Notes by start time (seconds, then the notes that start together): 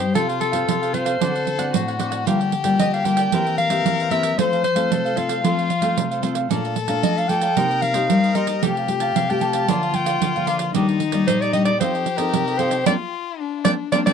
Already playing: G2 G4 C5
0.00 G4 C5 D#5, pandeiro
0.14 C3 C4 F4 A4 C5 F5, pandeiro
0.29 A4 C5 F5, pandeiro
0.40 A4, muted cavaquinho stroke, pandeiro
0.52 C4 F4 A4 C5 F5, pandeiro
0.68 C3 F4, pandeiro
0.82 A4 C5 F5, pandeiro
0.93 C4 F4 A4 C5 F5, pandeiro
1.05 A4 C5 F5, pandeiro
1.21 D3 C4 D4 F#4 A4 C5 D5 F#5, pandeiro
1.35 C5 D5 F#5, pandeiro
1.46 muted cavaquinho stroke, pandeiro
1.58 C4 F#4 A4 C5 D5 F#5, pandeiro
1.74 A2 F#4, pandeiro
1.88 C5 D5 F#5, pandeiro
1.99 C4 D4 F#4 A4 C5 D5 F#5, pandeiro
2.11 C5 D5 F#5, pandeiro
2.26 D3 G3 A#3 F4 G4 A#4 D5 G5, pandeiro
2.40 A#4 D5 G5, pandeiro
2.52 muted cavaquinho stroke, pandeiro
2.64 G3 A#3 F4 A#4 D5 G5, pandeiro
2.79 D3 D#5, pandeiro
2.93 A#4 D5 F5 G5, pandeiro
3.04 G3 A#3 F4 A#4 D5 G5, pandeiro
3.17 A#4 D5 G5, pandeiro
3.32 E3 A#3 C4 E4 G4 A#4 C5 E5, pandeiro
3.47 A#4 E5, pandeiro
3.58 F5, muted cavaquinho stroke, pandeiro
3.70 A#3 C4 G4 A#4 C5 E5, pandeiro
3.85 E3, pandeiro
4.00 A#4 C5 E5, pandeiro
4.10 A#3 C4 E4 G4 A#4 C5 E5, pandeiro
4.23 A#4 C5 E5, pandeiro
4.38 F3 A3 C4 F4 A4 C5 F5, pandeiro
4.52 A4 C5 F5, pandeiro
4.64 C5, muted cavaquinho stroke, pandeiro
4.75 A3 C4 F4 A4 C5 F5, pandeiro
4.91 C3 A4, pandeiro
5.05 A4 C5 F5, pandeiro
5.16 A3 C4 F4 A4 C5 F5, pandeiro
5.29 A4 C5 F5, pandeiro
5.44 F3 A3 C4 F4 A4 C5 F5, pandeiro
5.58 A4 C5 F5, pandeiro
5.69 muted cavaquinho stroke, pandeiro
5.82 A3 C4 F4 A4 C5 F5, pandeiro
5.97 C3, pandeiro
6.11 A4 C5 F5, pandeiro
6.22 A3 C4 F4 A4 C5 F5, pandeiro
6.35 A4 C5 F5, pandeiro
6.50 A#2 A3 D4 F4 A4 D5 F5 A#5, pandeiro
6.64 D5 F5 A#5, pandeiro
6.76 muted cavaquinho stroke, pandeiro
6.88 A3 D4 F4 D5 F5 A#5, pandeiro
7.03 F3 D#5, pandeiro
7.17 D5 F5 A#5, pandeiro
7.28 A3 D4 F4 A4 D5 F5 G5 A#5, pandeiro
7.41 D5 F5 A#5, pandeiro
7.56 C3 A#3 D#4 G4 A#4 C5 D#5, pandeiro
7.71 A#4 C5 D#5, pandeiro
7.82 F5, muted cavaquinho stroke, pandeiro
7.93 A#3 D#4 G4 A#4 C5 D#5, pandeiro
8.09 G3 A#4, pandeiro
8.23 A#4 C5 D#5, pandeiro
8.35 A#3 D#4 G4 A#4 C5 D#5, pandeiro
8.47 A#4 C5 D#5, pandeiro
8.62 C3 A3 F4 G4 A4 F5 A5, pandeiro
8.77 G4 F5 A5, pandeiro
8.88 A3 F4 G4, muted cavaquinho stroke, pandeiro
9.00 G4 F5 A5, pandeiro
9.15 C3 F5, pandeiro
9.30 A3 F4 G4 F5 G5 A5, pandeiro
9.41 G4 A4 F5 A5, pandeiro
9.53 G4 F5 A5, pandeiro
9.68 D3 F3 A#3 D4 F4 A#4 D5 F5, pandeiro
9.83 A#4 D5 F5, pandeiro
9.93 F3 A#3 F4 G5, muted cavaquinho stroke, pandeiro
10.06 A#4 D5 F5, pandeiro
10.22 D3, pandeiro
10.36 F3 A#3 F4 A#4 D5 F5, pandeiro
10.47 D4 A#4 D5 F5, pandeiro
10.58 A#4 D5 F5, pandeiro
10.74 D#3 G3 A#3 D4 D#4 G4 D5 D#5, pandeiro
10.88 D5 D#5, pandeiro
11.00 muted cavaquinho stroke, pandeiro
11.12 G3 A#3 G4 D5 D#5, pandeiro
11.27 A#2 C5, pandeiro
11.41 G4 D5 D#5, pandeiro
11.53 G3 A#3 D4 G4 D5 D#5, pandeiro
11.65 G4 D5 D#5, pandeiro
11.80 F3 C4 D#4 F4 G4 A4 C5 D#5, pandeiro
11.94 A4 C5 D#5, pandeiro
12.06 muted cavaquinho stroke, pandeiro
12.17 C4 D#4 A4 A#4 C5 D#5, pandeiro
12.34 C3, pandeiro
12.48 A4 C5 D#5, pandeiro
12.57 C4 D#4 F4 A4 C5 D#5, pandeiro
12.70 A4 C5 D#5, pandeiro
12.86 A#3 C4 D4 F4 A#4 C5 D5, pandeiro
13.40 D4
13.64 A#3 C4 D4 A#4 C5 D5, pandeiro
13.92 A#3 C4 D4 A#4 C5 D5, pandeiro
14.06 A#3 C4 D4 A#4 C5 D5, pandeiro